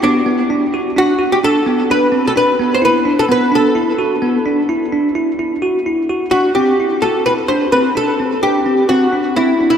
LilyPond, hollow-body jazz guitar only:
\new Staff \with { instrumentName = "Hollow-body jazz guitar" } { \time 7/4 \key a \dorian \tempo 4 = 129 d'2 fis'8. g'16 a'4 b'8. a'16 b'8. c''16 b'8. a'16 | b'8 a'1~ a'4. r8 fis'8 | g'4 a'8 b'8 c''8 b'8 a'4 g'4 fis'4 e'8. e'16 | }